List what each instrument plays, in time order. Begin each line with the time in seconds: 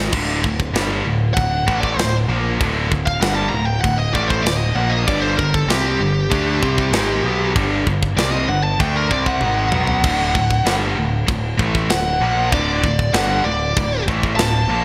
Already playing: distorted electric guitar G#2 D#3 G#3
0.12 picked electric bass D1, distorted electric guitar D2 A2 D3, kick, crash
0.44 picked electric bass D1, distorted electric guitar D2 A2, kick
0.60 kick
0.74 picked electric bass G1, distorted electric guitar G2 D3 G3, snare, crash
1.05 picked electric bass D1, distorted electric guitar D2 A2
1.34 picked electric bass D1, distorted electric guitar D2 A2, lead electric guitar F#5, kick, crash
1.67 picked electric bass A1, distorted electric guitar A2 E3 A3, kick
1.80 lead electric guitar D5, kick
1.97 picked electric bass D1, distorted electric guitar D2 A2, lead electric guitar C5, snare, crash
2.28 picked electric bass A#1, distorted electric guitar A#2 F3 A#3
2.60 picked electric bass D1, distorted electric guitar D2 A2 D3, kick, crash
2.91 picked electric bass D1, distorted electric guitar D2 A2, kick
3.06 lead electric guitar F5, kick
3.21 picked electric bass G1, distorted electric guitar G2 D3 G3, lead electric guitar F#5, snare, crash
3.34 lead electric guitar A5
3.49 picked electric bass D1, distorted electric guitar D2 A2, lead electric guitar A#5
3.65 lead electric guitar G5
3.81 picked electric bass D1, distorted electric guitar D2 A2, lead electric guitar F#5, kick, crash
3.98 lead electric guitar D#5
4.14 picked electric bass A1, distorted electric guitar A2 E3 A3, lead electric guitar D5, kick
4.28 lead electric guitar C5, kick
4.43 picked electric bass D1, distorted electric guitar D2 A2, lead electric guitar D5, crash
4.47 snare
4.58 lead electric guitar D#5
4.75 picked electric bass A#1, distorted electric guitar A#2 F3 A#3, lead electric guitar F#5
4.90 lead electric guitar D#5
5.07 picked electric bass G1, distorted electric guitar G2 D3 G3, lead electric guitar D5, kick, crash
5.21 lead electric guitar C5
5.38 picked electric bass G1, distorted electric guitar G2 D3, lead electric guitar A#4, kick
5.54 lead electric guitar A4, kick
5.67 picked electric bass C2, distorted electric guitar C3 G3 C4, lead electric guitar G4, snare, crash
5.99 picked electric bass G1, distorted electric guitar G2 D3
6.30 picked electric bass D2, distorted electric guitar D3 A3 D4, kick, crash
6.61 picked electric bass C2, distorted electric guitar C3 G3 C4, kick
6.78 kick
6.91 picked electric bass G#1, distorted electric guitar G#2 D#3 G#3, snare, crash
7.23 picked electric bass B1, distorted electric guitar B2 F#3 B3
7.55 picked electric bass G1, distorted electric guitar G2 D3 G3, kick, crash
7.87 picked electric bass G1, distorted electric guitar G2 D3, kick
8.03 kick
8.17 picked electric bass C2, distorted electric guitar C3 G3 C4, lead electric guitar D5, snare, crash
8.32 lead electric guitar D#5
8.48 picked electric bass G1, distorted electric guitar G2 D3, lead electric guitar F#5
8.64 lead electric guitar A5
8.80 picked electric bass D2, distorted electric guitar D3 A3 D4, lead electric guitar G5, kick, crash
8.96 lead electric guitar A#4
9.10 picked electric bass C2, distorted electric guitar C3 G3 C4, lead electric guitar D5, kick
9.26 lead electric guitar F#5, kick
9.41 picked electric bass G#1, distorted electric guitar G#2 D#3 G#3, high tom
9.71 picked electric bass B1, distorted electric guitar B2 F#3 B3, mid tom
9.87 floor tom
10.03 picked electric bass D1, distorted electric guitar D2 A2 D3, kick, crash
10.35 picked electric bass D1, distorted electric guitar D2 A2, kick
10.51 kick
10.65 picked electric bass G1, distorted electric guitar G2 D3 G3, snare, crash
10.96 picked electric bass D1, distorted electric guitar D2 A2
11.27 picked electric bass D1, distorted electric guitar D2 A2, kick, crash
11.58 picked electric bass A1, distorted electric guitar A2 E3 A3, kick
11.75 kick
11.89 picked electric bass D1, distorted electric guitar D2 A2, lead electric guitar F#5, snare, crash
12.21 picked electric bass A#1, distorted electric guitar A#2 F3 A#3
12.52 picked electric bass D1, distorted electric guitar D2 A2 D3, lead electric guitar D5, kick, crash
12.83 picked electric bass D1, distorted electric guitar D2 A2, kick
12.99 kick
13.13 picked electric bass G1, distorted electric guitar G2 D3 G3, lead electric guitar F#5, snare, crash
13.44 picked electric bass D1, distorted electric guitar D2 A2, lead electric guitar D5
13.76 picked electric bass D1, distorted electric guitar D2 A2, kick, crash
14.08 picked electric bass A1, distorted electric guitar A2 E3 A3, kick
14.23 kick
14.36 picked electric bass D1, distorted electric guitar D2 A2, lead electric guitar A5, snare, crash
14.68 picked electric bass A#1, distorted electric guitar A#2 F3 A#3